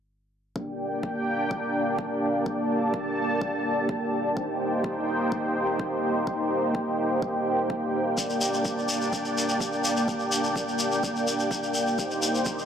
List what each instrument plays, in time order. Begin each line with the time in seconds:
0.56 supersaw synth A#3 D4 G4 D5 G5, kick
1.03 kick
1.51 kick
1.99 kick
2.46 supersaw synth A5, kick
2.94 kick
3.41 kick
3.89 kick
4.37 supersaw synth A#3 D#4 C5 G5, kick
4.84 kick
5.32 kick
5.80 kick
6.27 kick
6.75 kick
7.22 kick
7.70 kick
8.18 supersaw synth D4 D5, kick, shekere
8.30 shekere
8.41 shekere
8.54 shekere
8.65 kick, shekere
8.78 shekere
8.89 shekere
9.01 shekere
9.13 kick, shekere
9.25 shekere
9.38 shekere
9.49 shekere
9.60 kick, shekere
9.73 shekere
9.84 shekere
9.97 shekere
10.08 kick, shekere
10.20 shekere
10.32 shekere
10.44 shekere
10.56 kick, shekere
10.68 shekere
10.79 shekere
10.92 shekere
11.03 kick, shekere
11.16 shekere
11.27 shekere
11.40 shekere
11.51 kick, shekere
11.63 shekere
11.74 shekere
11.87 shekere
11.98 supersaw synth D#4 G4 C5, kick, shekere
12.11 shekere
12.22 shekere
12.35 shekere
12.45 kick, shekere
12.59 shekere